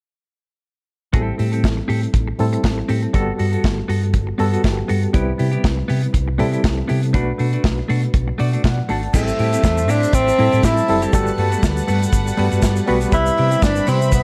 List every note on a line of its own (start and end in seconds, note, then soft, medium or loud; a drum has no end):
1.13 1.30 A1 medium
1.13 1.93 G3 medium
1.13 1.34 C4 medium
1.13 1.94 C4 medium
1.13 1.94 E4 medium
1.13 1.35 G4 medium
1.13 1.94 A4 medium
1.13 1.35 A4 medium
1.13 kick loud
1.13 closed hi-hat medium
1.38 1.66 A2 medium
1.38 1.53 C4 soft
1.38 1.52 G4 medium
1.38 1.51 A4 medium
1.38 open hi-hat medium
1.52 1.65 C4 soft
1.52 1.65 G4 soft
1.52 1.64 A4 medium
1.52 closed hi-hat medium
1.64 1.80 A1 medium
1.64 kick loud
1.64 snare loud
1.64 closed hi-hat medium
1.77 muted clean electric guitar stroke soft
1.88 2.05 A2 medium
1.88 2.06 C4 medium
1.88 2.02 G4 medium
1.88 2.01 A4 medium
1.88 open hi-hat medium
2.02 muted clean electric guitar stroke soft
2.02 closed hi-hat soft
2.13 2.30 A1 loud
2.13 muted clean electric guitar stroke soft
2.13 kick loud
2.13 closed hi-hat medium
2.28 muted clean electric guitar stroke soft
2.39 2.56 A2 medium
2.39 2.99 G3 medium
2.39 3.00 C4 medium
2.39 3.00 E4 medium
2.39 3.00 A4 medium
2.39 open hi-hat medium
2.53 muted clean electric guitar stroke soft
2.53 closed hi-hat soft
2.63 2.80 A1 medium
2.63 muted clean electric guitar stroke soft
2.63 kick medium
2.63 snare loud
2.63 closed hi-hat medium
2.78 muted clean electric guitar stroke soft
2.88 3.05 A2 medium
2.88 3.06 C4 medium
2.88 3.03 G4 medium
2.88 3.01 A4 medium
2.88 open hi-hat medium
3.03 muted clean electric guitar stroke medium
3.03 closed hi-hat soft
3.13 3.30 G1 loud
3.13 3.94 G3 medium
3.13 3.31 B3 medium
3.13 3.94 B3 medium
3.13 3.32 F#4 medium
3.13 3.94 F#4 medium
3.13 3.32 A4 medium
3.13 3.94 A4 medium
3.13 kick loud
3.13 closed hi-hat medium
3.38 3.56 G2 medium
3.38 3.53 B3 medium
3.38 3.53 F#4 medium
3.38 3.51 A4 medium
3.38 open hi-hat medium
3.53 3.65 B3 soft
3.53 3.65 F#4 soft
3.53 3.64 A4 medium
3.53 closed hi-hat medium
3.64 3.80 G1 loud
3.64 kick loud
3.64 snare loud
3.64 closed hi-hat medium
3.78 muted clean electric guitar stroke soft
3.88 4.16 G2 loud
3.88 4.06 B3 medium
3.88 4.03 F#4 medium
3.88 4.01 A4 medium
3.88 open hi-hat medium
4.03 muted clean electric guitar stroke soft
4.03 closed hi-hat soft
4.13 4.30 G1 medium
4.13 muted clean electric guitar stroke soft
4.13 kick loud
4.13 closed hi-hat medium
4.27 muted clean electric guitar stroke soft
4.38 4.56 G2 medium
4.38 4.99 G3 medium
4.38 4.52 B3 medium
4.38 5.00 B3 medium
4.38 4.52 F#4 medium
4.38 5.00 F#4 medium
4.38 4.51 A4 medium
4.38 5.00 A4 medium
4.38 open hi-hat medium
4.52 4.62 B3 medium
4.52 4.62 F#4 medium
4.52 4.63 A4 medium
4.52 closed hi-hat soft
4.64 4.80 G1 medium
4.64 kick loud
4.64 snare medium
4.64 closed hi-hat medium
4.77 muted clean electric guitar stroke soft
4.88 5.06 G2 medium
4.88 5.06 B3 medium
4.88 5.03 F#4 medium
4.88 5.02 A4 medium
4.88 open hi-hat medium
5.03 muted clean electric guitar stroke soft
5.03 closed hi-hat soft
5.13 5.30 C2 loud
5.13 5.94 G3 medium
5.13 5.31 B3 medium
5.13 5.94 C4 medium
5.13 5.32 E4 medium
5.13 5.94 E4 medium
5.13 5.32 G4 medium
5.13 5.94 B4 medium
5.13 kick loud
5.13 closed hi-hat medium
5.38 5.56 C3 medium
5.38 5.52 B3 medium
5.38 5.52 E4 medium
5.38 5.50 G4 medium
5.38 open hi-hat medium
5.51 5.65 B3 soft
5.51 5.65 E4 medium
5.51 5.64 G4 medium
5.51 closed hi-hat soft
5.64 5.80 C2 loud
5.64 kick loud
5.64 snare loud
5.64 closed hi-hat medium
5.77 muted clean electric guitar stroke soft
5.88 6.06 C3 loud
5.88 6.06 B3 medium
5.88 6.03 E4 medium
5.88 6.01 G4 medium
5.88 open hi-hat medium
6.03 muted clean electric guitar stroke soft
6.03 closed hi-hat soft
6.13 6.42 C2 medium
6.13 muted clean electric guitar stroke soft
6.13 kick medium
6.13 closed hi-hat medium
6.28 muted clean electric guitar stroke soft
6.38 6.56 C3 medium
6.38 6.99 G3 medium
6.38 6.52 B3 medium
6.38 7.00 C4 medium
6.38 6.52 E4 medium
6.38 7.00 E4 medium
6.38 6.51 G4 medium
6.38 7.00 A4 medium
6.38 open hi-hat medium
6.52 6.62 B3 soft
6.52 6.63 E4 medium
6.52 6.63 G4 medium
6.52 closed hi-hat soft
6.63 6.80 C2 medium
6.63 muted clean electric guitar stroke soft
6.63 kick loud
6.63 snare loud
6.63 closed hi-hat medium
6.78 muted clean electric guitar stroke soft
6.88 7.16 C3 loud
6.88 7.06 B3 medium
6.88 7.02 E4 medium
6.88 7.01 G4 medium
6.88 open hi-hat medium
7.02 muted clean electric guitar stroke soft
7.02 closed hi-hat medium
7.13 7.30 B1 medium
7.13 7.31 A3 medium
7.13 7.93 A3 medium
7.13 7.32 D4 medium
7.13 7.94 D4 medium
7.13 7.32 F#4 medium
7.13 7.94 F#4 medium
7.13 7.94 B4 medium
7.13 kick loud
7.13 closed hi-hat medium
7.38 7.56 B2 loud
7.38 7.53 A3 medium
7.38 7.53 D4 medium
7.38 7.51 F#4 medium
7.38 open hi-hat medium
7.53 7.65 A3 soft
7.53 7.65 D4 medium
7.53 7.64 F#4 medium
7.53 closed hi-hat medium
7.64 7.80 B1 loud
7.64 kick loud
7.64 snare loud
7.64 closed hi-hat medium
7.78 muted clean electric guitar stroke soft
7.88 8.06 B2 medium
7.88 8.06 A3 medium
7.88 8.03 D4 medium
7.88 8.02 F#4 medium
7.88 open hi-hat medium
8.03 muted clean electric guitar stroke soft
8.03 closed hi-hat soft
8.14 8.30 B1 loud
8.14 muted clean electric guitar stroke soft
8.14 kick loud
8.14 closed hi-hat medium
8.28 muted clean electric guitar stroke soft
8.38 8.56 B2 loud
8.38 8.53 A3 medium
8.38 8.52 D4 medium
8.38 8.51 F#4 medium
8.38 8.63 D5 medium
8.38 open hi-hat medium
8.52 8.62 A3 medium
8.52 8.63 D4 medium
8.52 8.64 F#4 medium
8.52 closed hi-hat soft
8.64 8.80 B2 loud
8.64 8.88 F#5 medium
8.64 kick loud
8.64 snare loud
8.64 closed hi-hat medium
8.78 muted clean electric guitar stroke soft
8.89 9.06 G#1 medium
8.89 9.06 A3 medium
8.89 9.03 D4 medium
8.89 9.02 F#4 medium
8.89 9.37 A5 medium
8.89 open hi-hat medium
9.03 muted clean electric guitar stroke soft
9.03 closed hi-hat soft
9.13 9.30 A1 loud
9.13 9.93 G3 medium
9.13 14.23 G3 medium
9.13 9.92 A3 medium
9.13 9.21 B3 soft
9.13 9.31 C4 medium
9.13 9.32 E4 medium
9.13 9.94 E4 medium
9.13 9.32 G4 medium
9.13 9.94 A4 medium
9.13 11.12 C5 medium
9.13 11.12 E5 medium
9.13 13.09 A5 medium
9.13 kick loud
9.13 crash loud
9.13 shaker medium
9.20 9.96 C4 medium
9.28 shaker medium
9.38 9.55 A2 loud
9.38 9.53 C4 medium
9.38 9.52 E4 medium
9.38 9.51 G4 medium
9.38 open hi-hat medium
9.52 9.65 C4 medium
9.52 9.65 E4 medium
9.52 9.64 G4 medium
9.52 closed hi-hat medium
9.52 shaker medium
9.64 9.89 E2 medium
9.64 kick loud
9.64 snare loud
9.64 closed hi-hat medium
9.64 shaker medium
9.78 muted clean electric guitar stroke soft
9.78 shaker medium
9.88 10.05 A2 medium
9.88 10.06 C4 medium
9.88 10.16 D4 medium
9.88 10.02 E4 medium
9.88 10.01 G4 medium
9.88 open hi-hat medium
9.88 shaker soft
10.02 muted clean electric guitar stroke soft
10.02 closed hi-hat soft
10.02 shaker medium
10.13 10.29 A1 medium
10.13 10.66 C4 medium
10.13 muted clean electric guitar stroke soft
10.13 kick loud
10.13 closed hi-hat medium
10.13 shaker medium
10.28 muted clean electric guitar stroke soft
10.28 shaker medium
10.38 10.48 A2 medium
10.38 10.79 G3 medium
10.38 10.53 C4 medium
10.38 10.80 C4 medium
10.38 10.52 E4 medium
10.38 10.80 E4 medium
10.38 10.51 G4 medium
10.38 10.80 A4 medium
10.38 open hi-hat medium
10.52 10.60 A2 medium
10.52 10.61 C4 soft
10.52 10.62 E4 medium
10.52 10.63 G4 medium
10.52 closed hi-hat soft
10.52 shaker soft
10.63 10.80 A2 medium
10.63 10.81 C4 medium
10.63 10.77 E4 medium
10.63 11.03 E4 medium
10.63 10.75 G4 medium
10.63 kick loud
10.63 snare loud
10.63 closed hi-hat medium
10.63 shaker medium
10.77 muted clean electric guitar stroke soft
10.77 shaker medium
10.88 11.05 F#1 medium
10.88 11.09 G3 medium
10.88 11.09 C4 medium
10.88 11.09 E4 medium
10.88 11.09 A4 medium
10.88 muted clean electric guitar stroke soft
10.88 open hi-hat medium
11.02 11.13 C4 medium
11.02 11.13 E4 medium
11.02 11.14 G4 medium
11.02 closed hi-hat medium
11.02 shaker soft
11.13 11.30 G1 medium
11.13 11.93 G3 medium
11.13 11.31 A3 medium
11.13 11.93 B3 medium
11.13 11.31 B3 medium
11.13 11.93 F#4 medium
11.13 11.31 F#4 medium
11.13 11.93 A4 medium
11.13 13.11 B4 medium
11.13 13.11 F#5 medium
11.13 kick loud
11.13 closed hi-hat medium
11.13 shaker medium
11.27 shaker medium
11.38 11.54 G2 medium
11.38 11.52 A3 medium
11.38 11.51 B3 medium
11.38 11.50 F#4 medium
11.38 open hi-hat medium
11.52 11.64 A3 medium
11.52 11.64 B3 medium
11.52 11.63 F#4 medium
11.52 closed hi-hat medium
11.52 shaker medium
11.63 11.79 D2 medium
11.63 kick loud
11.63 snare loud
11.63 closed hi-hat medium
11.63 shaker medium
11.77 muted clean electric guitar stroke soft
11.77 shaker medium
11.88 12.05 G2 loud
11.88 12.05 A3 medium
11.88 12.01 B3 medium
11.88 12.00 F#4 medium
11.88 open hi-hat medium
11.88 shaker soft
12.01 muted clean electric guitar stroke soft
12.01 closed hi-hat soft
12.01 shaker medium
12.13 12.29 G1 loud
12.13 muted clean electric guitar stroke soft
12.13 kick loud
12.13 closed hi-hat medium
12.13 shaker medium
12.26 muted clean electric guitar stroke soft
12.26 shaker medium
12.37 12.47 G2 loud
12.37 12.78 G3 medium
12.37 12.52 A3 medium
12.37 12.79 B3 medium
12.37 12.52 B3 medium
12.37 12.79 F#4 medium
12.37 12.50 F#4 medium
12.37 12.79 B4 medium
12.37 open hi-hat medium
12.52 12.59 G2 medium
12.52 12.61 A3 medium
12.52 12.62 B3 soft
12.52 12.63 F#4 medium
12.52 closed hi-hat soft
12.52 shaker soft
12.62 12.79 G2 loud
12.62 kick loud
12.62 snare loud
12.62 closed hi-hat medium
12.62 shaker medium
12.76 muted clean electric guitar stroke soft
12.76 shaker medium
12.87 13.04 B1 medium
12.87 13.08 G3 medium
12.87 13.02 A3 medium
12.87 13.08 B3 medium
12.87 13.01 B3 medium
12.87 13.08 F#4 medium
12.87 13.00 F#4 loud
12.87 13.08 B4 medium
12.87 open hi-hat medium
13.01 13.12 A3 soft
13.01 13.11 B3 medium
13.01 13.13 F#4 medium
13.01 closed hi-hat soft
13.01 shaker soft
13.12 13.29 C2 medium
13.12 13.92 G3 medium
13.12 13.30 B3 medium
13.12 13.92 C4 medium
13.12 14.23 C4 medium
13.12 13.30 E4 medium
13.12 13.92 E4 medium
13.12 13.65 E4 loud
13.12 13.31 G4 medium
13.12 13.92 B4 medium
13.12 14.23 E5 medium
13.12 14.23 B5 medium
13.12 kick loud
13.12 closed hi-hat medium
13.12 shaker medium
13.26 shaker medium
13.37 13.55 C3 medium
13.37 13.51 B3 medium
13.37 13.51 E4 medium
13.37 13.50 G4 medium
13.37 open hi-hat medium
13.51 13.63 B3 soft
13.51 13.63 E4 medium
13.51 13.63 G4 medium
13.51 closed hi-hat medium
13.51 shaker medium
13.62 13.79 G1 loud
13.62 13.90 D4 loud
13.62 kick loud
13.62 snare loud
13.62 closed hi-hat medium
13.62 shaker medium
13.76 muted clean electric guitar stroke soft
13.76 shaker soft
13.87 14.14 C3 medium
13.87 14.05 B3 medium
13.87 14.13 C4 medium
13.87 14.01 E4 medium
13.87 14.00 G4 medium
13.87 open hi-hat medium
13.87 shaker soft
14.01 muted clean electric guitar stroke soft
14.01 closed hi-hat soft
14.01 shaker medium
14.11 14.23 C2 medium
14.11 14.23 C4 medium
14.11 muted clean electric guitar stroke soft
14.11 kick loud
14.11 closed hi-hat medium
14.11 shaker medium